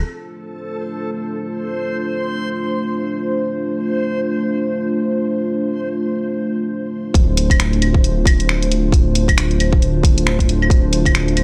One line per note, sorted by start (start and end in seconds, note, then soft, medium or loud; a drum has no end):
0.03 7.10 A3 medium
0.03 7.10 D4 medium
0.03 7.10 F4 medium
0.03 7.11 C5 medium
0.03 6.26 C5 medium
7.14 11.44 D1 medium
7.14 11.44 A3 medium
7.14 11.44 D4 medium
7.14 11.44 F4 medium
7.14 11.44 C5 medium
7.14 kick loud
7.14 closed hi-hat medium
7.37 open hi-hat medium
7.50 kick medium
7.50 closed hi-hat medium
7.50 claves medium
7.60 finger snap loud
7.60 closed hi-hat medium
7.73 closed hi-hat soft
7.82 open hi-hat medium
7.82 claves soft
7.94 kick loud
8.04 closed hi-hat medium
8.25 kick loud
8.25 open hi-hat medium
8.25 claves medium
8.40 closed hi-hat medium
8.49 finger snap loud
8.62 closed hi-hat medium
8.72 open hi-hat medium
8.92 kick loud
8.92 closed hi-hat medium
9.15 open hi-hat medium
9.28 kick medium
9.28 closed hi-hat medium
9.28 claves medium
9.38 finger snap loud
9.38 closed hi-hat medium
9.51 closed hi-hat soft
9.60 open hi-hat medium
9.60 claves soft
9.73 kick loud
9.82 closed hi-hat medium
10.03 kick loud
10.03 open hi-hat medium
10.18 closed hi-hat medium
10.27 finger snap loud
10.39 kick medium
10.39 closed hi-hat medium
10.49 open hi-hat medium
10.62 claves medium
10.70 kick loud
10.70 closed hi-hat medium
10.93 open hi-hat medium
11.05 kick medium
11.05 closed hi-hat medium
11.05 claves medium
11.15 finger snap loud
11.15 closed hi-hat medium
11.28 closed hi-hat soft
11.37 open hi-hat medium
11.37 claves soft